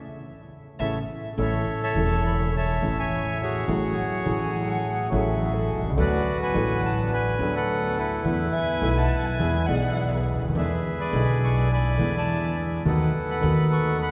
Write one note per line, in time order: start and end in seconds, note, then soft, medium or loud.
0.79 1.01 A1 medium
0.79 0.99 C#3 medium
0.79 0.99 E3 medium
0.79 0.98 A3 medium
0.79 0.99 A3 medium
0.79 0.98 B3 medium
0.79 0.98 C#4 medium
0.79 0.99 C#5 medium
0.79 0.98 E5 medium
0.79 0.99 E5 medium
0.79 0.99 A5 medium
1.38 1.62 A1 medium
1.38 1.62 A2 medium
1.38 1.62 E3 medium
1.38 1.62 A3 medium
1.38 1.62 C#4 medium
1.38 1.63 C#4 medium
1.38 1.62 E4 medium
1.38 1.62 A4 medium
1.38 2.51 A4 medium
1.38 1.82 C#5 medium
1.38 1.80 E5 medium
1.83 2.56 C#5 medium
1.83 2.55 E5 medium
1.83 2.23 A5 loud
1.95 2.77 E1 loud
1.95 2.78 E1 medium
1.95 2.78 E2 medium
1.95 2.77 E3 medium
1.95 2.78 A3 medium
1.95 2.78 C#4 medium
1.95 2.79 C#4 medium
1.95 2.78 E4 medium
1.95 2.79 A4 medium
2.27 2.39 B5 medium
2.57 2.98 C#5 medium
2.57 2.98 E5 medium
2.57 2.99 A5 loud
2.81 3.64 A1 medium
2.81 3.64 A2 medium
2.81 3.63 E3 medium
2.81 3.64 A3 medium
2.81 3.64 C#4 medium
2.81 3.65 C#4 medium
2.81 3.64 E4 medium
2.85 3.65 A4 medium
2.99 3.41 C#5 medium
2.99 3.66 E5 medium
2.99 3.38 G#5 loud
3.42 5.09 F#4 medium
3.42 5.09 G#4 medium
3.42 5.09 C#5 medium
3.68 3.92 A1 loud
3.68 3.93 A1 medium
3.68 3.92 A2 medium
3.68 3.92 F#3 medium
3.68 3.93 A3 medium
3.68 3.92 C#4 medium
3.68 3.93 F#4 medium
3.68 3.93 G#4 medium
3.97 4.41 F#5 loud
4.23 5.07 A1 medium
4.23 5.07 A1 loud
4.23 5.07 A2 medium
4.23 5.06 F#3 medium
4.23 5.07 A3 medium
4.23 5.07 C#4 medium
4.23 5.07 F#4 medium
4.23 5.07 G#4 loud
4.27 5.08 G#4 medium
4.40 4.70 G#5 loud
4.68 5.11 F#5 loud
5.10 5.93 A1 medium
5.10 5.76 A1 loud
5.10 5.93 A2 loud
5.10 5.92 F#3 medium
5.10 5.92 A3 medium
5.10 5.93 A3 medium
5.10 5.93 C#4 medium
5.10 5.92 F#4 medium
5.10 5.92 G#4 loud
5.10 5.55 E5 loud
5.14 5.94 G#4 medium
5.54 5.83 A4 medium
5.76 5.83 B1 medium
5.76 5.82 B1 medium
5.83 5.89 C2 medium
5.83 5.90 C2 medium
5.90 5.97 C#2 medium
5.97 6.21 D2 medium
5.97 6.21 D2 loud
5.97 6.21 D3 medium
5.97 6.21 F#3 medium
5.97 6.21 B3 medium
5.97 6.21 D4 medium
5.97 6.21 F#4 loud
5.97 7.08 F#4 medium
5.97 6.21 A4 medium
5.97 6.41 B4 medium
5.97 6.38 D5 loud
6.42 7.11 B4 medium
6.42 6.81 G#5 loud
6.52 7.35 A1 medium
6.52 7.36 A1 loud
6.52 7.35 A2 medium
6.52 7.34 F#3 medium
6.52 7.35 B3 medium
6.52 7.35 D4 medium
6.52 7.35 F#4 loud
6.56 7.36 A4 medium
6.85 7.13 A5 loud
7.13 7.55 B4 medium
7.13 7.57 G#5 loud
7.38 8.21 D2 loud
7.38 8.21 D2 medium
7.38 8.21 D3 medium
7.38 8.20 F#3 medium
7.38 8.21 B3 medium
7.38 8.21 D4 medium
7.38 8.21 F#4 loud
7.38 8.22 A4 medium
7.56 8.22 A4 medium
7.56 7.98 B4 medium
7.56 7.95 F#5 loud
7.98 9.65 E4 medium
7.98 9.66 B4 loud
8.24 8.49 E2 medium
8.24 8.49 E3 medium
8.24 8.49 A3 medium
8.24 8.49 B3 medium
8.24 8.49 E4 medium
8.24 8.49 A4 medium
8.52 8.93 E5 loud
8.52 8.99 G#5 loud
8.81 9.06 B1 medium
8.81 9.06 B2 medium
8.81 9.06 E3 medium
8.81 9.06 A3 medium
8.81 9.06 B3 medium
8.81 9.06 E4 medium
8.81 9.07 A4 medium
8.97 9.18 F#5 loud
8.97 9.19 A5 medium
9.18 9.28 F#5 medium
9.18 9.26 A5 medium
9.25 9.70 E5 loud
9.25 9.68 G#5 loud
9.39 9.64 E2 medium
9.39 9.64 E3 medium
9.39 9.63 G#3 medium
9.39 9.64 G#3 medium
9.39 9.63 B3 medium
9.39 9.64 B3 medium
9.39 9.63 E4 medium
9.39 9.64 G#4 medium
9.66 10.34 B1 medium
9.66 10.51 B1 medium
9.66 10.51 B2 medium
9.66 10.50 E3 medium
9.66 10.50 G#3 medium
9.66 10.51 G#3 medium
9.66 10.50 B3 medium
9.66 10.51 B3 medium
9.66 10.51 E4 medium
9.66 10.15 D5 medium
9.66 10.13 F#5 loud
9.71 10.52 G#4 medium
10.12 10.41 G#4 medium
10.12 10.41 B4 medium
10.34 10.41 C#2 soft
10.41 10.48 D2 medium
10.48 10.55 D#2 medium
10.55 10.79 E2 loud
10.55 10.80 E2 medium
10.55 10.79 D3 medium
10.55 10.80 E3 medium
10.55 10.79 G#3 medium
10.55 10.80 G#3 medium
10.55 10.80 B3 medium
10.55 10.79 D4 medium
10.55 10.79 E4 medium
10.55 10.80 E4 medium
10.55 11.68 G#4 medium
10.55 11.68 B4 medium
10.55 11.01 E5 medium
11.00 11.72 D5 medium
11.00 11.71 G#5 medium
11.00 11.44 B5 loud
11.11 11.95 B1 loud
11.11 11.95 B1 medium
11.11 11.95 B2 medium
11.11 11.94 D3 medium
11.11 11.95 G#3 medium
11.11 11.96 B3 medium
11.11 11.95 D4 medium
11.11 11.95 E4 loud
11.11 11.96 E4 medium
11.44 11.56 C#6 medium
11.73 12.16 D5 medium
11.73 12.83 G#5 medium
11.73 12.12 B5 loud
11.97 12.81 E2 medium
11.97 12.81 E2 loud
11.97 12.80 D3 medium
11.97 12.81 E3 medium
11.97 12.81 G#3 medium
11.97 12.82 B3 medium
11.97 12.81 D4 medium
11.97 12.81 E4 medium
12.01 12.82 E4 medium
12.17 12.84 D5 medium
12.17 12.56 A5 medium
12.85 13.10 D#2 loud
12.85 13.10 D#2 medium
12.85 13.10 D#3 medium
12.85 13.10 A3 medium
12.85 13.10 B3 medium
12.85 13.10 D#4 medium
12.85 13.10 F#4 medium
12.85 13.98 A4 medium
12.85 13.97 B4 medium
12.85 13.30 F#5 medium
13.31 14.01 F#5 medium
13.31 13.70 B5 loud
13.41 14.11 D#2 loud
13.41 14.11 D#2 medium
13.41 14.11 D#3 medium
13.41 14.11 A3 medium
13.41 14.11 B3 medium
13.41 14.11 D#4 loud
13.45 14.11 F#4 medium
13.73 13.99 C#6 loud
14.02 14.11 F#5 medium
14.02 14.11 B5 loud